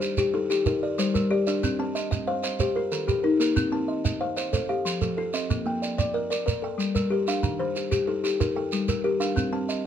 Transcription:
0.00 0.18 D#3 medium
0.00 0.50 G4 medium
0.00 0.34 C5 medium
0.00 shekere medium
0.17 0.49 G4 medium
0.17 shekere medium
0.34 0.49 D#4 medium
0.34 0.83 A4 medium
0.50 0.66 D#4 medium
0.50 0.66 G4 medium
0.50 shekere medium
0.66 0.83 D#4 medium
0.66 1.13 A#4 medium
0.66 shekere medium
0.83 1.30 D5 medium
0.98 1.31 G3 medium
0.98 1.47 C5 medium
0.98 shekere medium
1.14 1.47 G3 medium
1.14 1.63 A#4 medium
1.14 shekere medium
1.31 1.63 G4 medium
1.31 1.46 D5 medium
1.47 1.79 D4 medium
1.47 1.95 D5 medium
1.47 shekere medium
1.63 1.95 C4 medium
1.63 shekere medium
1.79 2.11 C4 medium
1.79 2.28 A5 medium
1.95 2.43 D#5 medium
1.95 shekere soft
2.11 2.42 D#5 medium
2.11 shekere medium
2.27 2.42 C5 medium
2.27 2.76 F5 medium
2.43 2.59 C5 medium
2.43 2.60 D#5 medium
2.43 shekere medium
2.60 3.07 G4 medium
2.60 2.76 C5 medium
2.60 shekere medium
2.76 3.24 F4 medium
2.76 3.22 A#4 medium
2.92 3.24 D#3 medium
2.92 3.40 A4 medium
2.92 shekere medium
3.07 3.40 D#3 medium
3.07 3.56 G4 medium
3.07 shekere medium
3.24 3.56 D#4 medium
3.24 3.39 A#4 medium
3.40 3.72 A#3 medium
3.40 3.88 A#4 medium
3.40 shekere medium
3.56 3.89 C4 medium
3.56 shekere medium
3.72 4.04 C4 medium
3.72 4.21 A5 medium
3.88 4.37 D#5 medium
4.05 4.35 D#5 medium
4.05 shekere medium
4.21 4.36 C5 medium
4.21 4.69 F5 medium
4.37 4.52 C5 medium
4.37 4.53 D#5 medium
4.37 shekere medium
4.53 5.00 A4 medium
4.53 4.69 C5 medium
4.53 shekere medium
4.69 5.18 G4 medium
4.69 5.18 F5 medium
4.85 5.17 F3 medium
4.85 shekere medium
5.01 5.34 F3 medium
5.01 5.50 A4 medium
5.01 shekere medium
5.17 5.50 F4 medium
5.17 5.66 A4 medium
5.34 5.66 C4 medium
5.34 5.82 D#5 medium
5.34 shekere medium
5.50 5.82 A#3 medium
5.50 shekere medium
5.66 5.98 A#3 medium
5.66 6.15 G5 medium
5.82 6.30 D5 medium
5.82 shekere medium
5.98 6.29 D5 medium
5.98 shekere medium
6.14 6.30 A#4 medium
6.14 6.63 D#5 medium
6.30 6.45 A#4 medium
6.30 6.46 D5 medium
6.30 shekere medium
6.46 6.94 A#4 medium
6.46 6.63 A#4 medium
6.46 shekere medium
6.62 7.11 A4 medium
6.62 7.12 G5 medium
6.78 7.11 G3 medium
6.78 shekere medium
6.95 7.27 G3 medium
6.95 7.43 A#4 medium
6.95 shekere medium
7.10 7.43 G4 medium
7.10 7.60 A#4 medium
7.27 7.60 D4 medium
7.27 7.76 F5 medium
7.27 shekere medium
7.43 7.75 D#3 medium
7.43 shekere medium
7.59 7.92 D#3 medium
7.59 8.08 C5 medium
7.76 8.24 G4 medium
7.76 shekere medium
7.91 8.23 G4 medium
7.91 shekere medium
8.07 8.22 D#4 medium
8.07 8.55 A4 medium
8.24 8.39 D#4 medium
8.24 8.40 G4 medium
8.24 shekere medium
8.40 8.56 D#4 medium
8.40 8.87 A#4 medium
8.40 shekere medium
8.56 9.04 A4 medium
8.56 9.04 G5 medium
8.72 9.05 G3 medium
8.72 shekere medium
8.88 9.20 G3 medium
8.88 9.37 A#4 medium
8.88 shekere medium
9.04 9.36 G4 medium
9.04 9.52 A#4 medium
9.20 9.52 D4 medium
9.20 9.68 F5 medium
9.20 shekere medium
9.36 9.68 C4 medium
9.36 shekere medium
9.53 9.85 C4 medium
9.53 9.86 A5 medium
9.69 9.86 D#5 medium
9.69 shekere medium

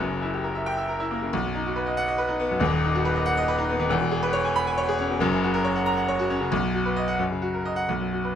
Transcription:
0.00 1.27 F#1 loud
0.00 1.28 F#2 loud
0.11 0.29 C#3 medium
0.22 0.39 E4 medium
0.34 0.50 G4 medium
0.44 0.61 A#4 medium
0.55 0.72 E5 medium
0.66 0.84 G5 loud
0.77 0.95 E5 medium
0.88 1.06 A#4 medium
1.00 1.17 E4 medium
1.11 1.28 A#3 medium
1.22 1.33 C#3 medium
1.33 2.57 B1 loud
1.45 1.61 F#2 medium
1.55 1.72 D#4 medium
1.66 1.82 F#4 medium
1.76 1.92 B4 medium
1.87 2.03 D#5 medium
1.97 2.14 F#5 loud
2.08 2.24 D#5 medium
2.18 2.35 B4 loud
2.29 2.46 D#4 medium
2.40 2.56 B3 loud
2.51 2.61 F#2 medium
2.60 3.85 D#1 loud
2.60 3.86 D#2 loud
2.72 2.89 D#3 medium
2.83 3.00 D#4 medium
2.95 3.11 F#4 loud
3.05 3.22 B4 loud
3.16 3.32 D#5 medium
3.26 3.43 F#5 loud
3.37 3.54 D#5 loud
3.48 3.64 B4 loud
3.58 3.75 D#4 loud
3.69 3.86 B3 loud
3.80 3.90 D#3 loud
3.89 5.16 E1 loud
3.89 5.17 E2 loud
4.01 4.18 B2 medium
4.11 4.29 G#4 loud
4.23 4.40 B4 loud
4.33 4.50 C#5 loud
4.45 4.62 G#5 medium
4.56 4.73 B5 loud
4.67 4.84 G#5 loud
4.78 4.95 C#5 loud
4.88 5.05 G#4 loud
4.99 5.16 C#4 loud
5.10 5.21 B2 medium
5.20 6.48 F#1 loud
5.20 6.48 F#2 loud
5.32 5.49 C#3 medium
5.44 5.60 F#4 loud
5.54 5.71 A#4 loud
5.65 5.82 C#5 loud
5.75 5.93 F#5 medium
5.86 6.04 A#5 loud
5.97 6.14 F#5 loud
6.08 6.26 C#5 loud
6.19 6.36 F#4 loud
6.30 6.48 C#4 loud
6.40 6.52 C#3 medium
6.52 7.17 B1 loud
6.63 6.81 F#2 medium
6.74 6.92 F#4 medium
6.86 7.04 B4 medium
6.96 7.15 D#5 loud
7.08 7.19 F#5 loud
7.19 7.86 F#2 loud
7.31 7.49 C#3 medium
7.42 7.60 F#4 medium
7.54 7.72 A#4 medium
7.65 7.84 D#5 medium
7.76 7.88 F#5 loud
7.89 8.35 B1 loud
8.01 8.19 F#2 medium
8.13 8.31 F#4 medium
8.25 8.35 B4 medium

